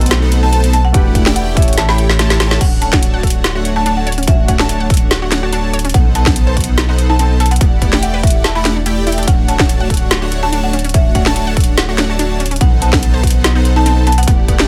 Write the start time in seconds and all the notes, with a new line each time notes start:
Already playing: B1 A3 B3 C4 D#4 F#4 A4 B4 C5 F#5
0.01 closed hi-hat
0.06 closed hi-hat
0.11 snare, closed hi-hat
0.22 B3 D#4 A4 C5 F#5
0.32 closed hi-hat
0.43 B3 D#4 A4 C5 A5
0.53 B3 D#4 A4 C5 A5, closed hi-hat
0.64 closed hi-hat
0.73 A5, closed hi-hat
0.85 F#5
0.92 E1 A3 D4 E4 F#4 G4 B4 D5 F#5, kick, closed hi-hat
1.15 kick, closed hi-hat
1.26 A3 E4 G4 D5 G5, snare
1.36 F#5, closed hi-hat
1.55 A3 C#4 E4 G4 A4 C#5 D5 E5, kick, closed hi-hat
1.62 closed hi-hat
1.68 closed hi-hat
1.73 closed hi-hat
1.78 A1 A5, snare, closed hi-hat
1.89 A3 E4 G4 C#5 G5 B5, snare
1.98 closed hi-hat
2.10 snare
2.19 A3 E4 G4 C#5 A5, snare, closed hi-hat
2.30 snare, closed hi-hat
2.40 A3 E4 G4 C#5 A5, snare, closed hi-hat
2.51 snare
2.61 D1 C#4 D4 F#4 C#5 F#5, kick, closed hi-hat, crash
2.82 C#4 A5, closed hi-hat
2.93 A3 D4 F#4 C#5 F#5 A5, kick, snare
3.03 closed hi-hat
3.14 F#5
3.23 F#4 A4 F#5, kick, closed hi-hat
3.27 closed hi-hat
3.30 closed hi-hat
3.44 F#4, snare, closed hi-hat
3.55 A3 D4 F#4 C#5 F#5
3.65 closed hi-hat
3.76 A3 D4 F#4 C#5 A5
3.86 A3 D4 F#4 C#5 A5, closed hi-hat
3.97 F#5
4.07 C#5, closed hi-hat
4.12 closed hi-hat
4.18 C#4, closed hi-hat
4.23 closed hi-hat
4.27 A3 C#4 D4 F#4 C#5 E5 F#5, kick, closed hi-hat
4.48 C#4 F#5, kick, closed hi-hat
4.59 A3 D4 F#4 C#5 A5, snare
4.69 A5, closed hi-hat
4.80 F#5
4.90 A3 D4 F#4 A4 C#5 F#5, kick, closed hi-hat
4.94 closed hi-hat
4.97 closed hi-hat
5.11 F#4, snare, closed hi-hat
5.22 A3 D4 F#4 C#5 F#5
5.32 snare, closed hi-hat
5.43 A3 D4 F#4 C#5 A5
5.53 A3 D4 F#4 C#5 A5, closed hi-hat
5.73 C#5, closed hi-hat
5.79 closed hi-hat
5.85 C#4, closed hi-hat
5.89 closed hi-hat
5.94 B1 B3 D#4 A4 C5 F#5, kick, closed hi-hat
6.15 B3 A5, closed hi-hat
6.26 B3 D#4 A4 C5 F#5 A5, kick, snare
6.36 closed hi-hat
6.47 C5
6.57 B3 D#4 F#4 A4 C5 F#5, kick, closed hi-hat
6.61 closed hi-hat
6.64 closed hi-hat
6.78 D#4, snare, closed hi-hat
6.89 B3 D#4 A4 C5 F#5
6.98 closed hi-hat
7.10 B3 D#4 A4 C5 A5
7.19 B3 C4 D#4 A4 C5 A5, closed hi-hat
7.40 A4 A5, closed hi-hat
7.46 closed hi-hat
7.51 B3 F#5, closed hi-hat
7.56 closed hi-hat
7.61 E1 A3 B3 E4 G4 D5 F#5, kick, closed hi-hat
7.82 B3, kick, closed hi-hat
7.93 A3 E4 G4 D5 G5, snare
8.03 F#5, closed hi-hat
8.14 B4
8.23 A3 E4 F#4 G4 E5 F#5, kick, closed hi-hat
8.27 closed hi-hat
8.30 closed hi-hat
8.44 E4 A5, snare, closed hi-hat
8.55 A3 E4 G4 D5 F#5 B5
8.65 G4, snare, closed hi-hat
8.76 D4
8.86 A3 E4 G4 D5 G5, closed hi-hat
9.07 A3 E4 G4 D5 G5, closed hi-hat
9.12 closed hi-hat
9.18 D4, closed hi-hat
9.23 closed hi-hat
9.27 D1 A3 C#4 D4 F#4 F#5, kick, closed hi-hat
9.48 C#4 A5, closed hi-hat
9.59 A3 D4 F#4 C#5 F#5 A5, kick, snare
9.69 closed hi-hat
9.80 F#5
9.90 A3 D4 F#4 A4 F#5, kick, closed hi-hat
9.94 closed hi-hat
9.97 closed hi-hat
10.11 F#4, snare, closed hi-hat
10.22 A3 D4 F#4 C#5 F#5
10.32 closed hi-hat
10.43 A3 D4 F#4 C#5 A5
10.52 A3 D4 F#4 C#5 A5, closed hi-hat
10.63 F#5
10.73 C#4, closed hi-hat
10.79 closed hi-hat
10.84 C#4, closed hi-hat
10.89 closed hi-hat
10.94 A3 C#4 D4 F#4 C#5 E5 F#5, kick, closed hi-hat
11.15 C#4 F#5, kick, closed hi-hat
11.26 A3 D4 F#4 C#5 A5, snare
11.36 A5, closed hi-hat
11.47 F#5
11.57 A3 D4 F#4 A4 C#5 F#5, kick, closed hi-hat
11.60 closed hi-hat
11.64 closed hi-hat
11.78 F#4, snare, closed hi-hat
11.89 A3 D4 F#4 C#5 F#5
11.98 snare, closed hi-hat
12.09 A3 D4 F#4 C#5 A5
12.19 A3 D4 F#4 C#5 A5, closed hi-hat
12.40 C#4, closed hi-hat
12.46 closed hi-hat
12.51 C#4, closed hi-hat
12.56 closed hi-hat
12.61 B1 B3 D#4 A4 C5 F#5, kick, closed hi-hat
12.82 B3 A5, closed hi-hat
12.93 B3 D#4 A4 F#5 A5, kick, snare
13.03 closed hi-hat
13.14 C5
13.23 B3 D#4 F#4 A4 C5 F#5, kick, closed hi-hat
13.27 closed hi-hat
13.30 closed hi-hat
13.44 D#4, snare, closed hi-hat
13.55 B3 D#4 A4 C5 F#5
13.65 closed hi-hat
13.76 B3 D#4 A4 C5 A5
13.86 B3 C4 D#4 A4 C5 A5, closed hi-hat
14.07 B3 A5, closed hi-hat
14.12 closed hi-hat
14.18 B3 F#5, closed hi-hat
14.23 closed hi-hat
14.27 E1 A3 B3 E4 G4 D5 F#5, kick, closed hi-hat
14.48 B3, kick, closed hi-hat
14.59 A3 E4 G4 D5 G5, snare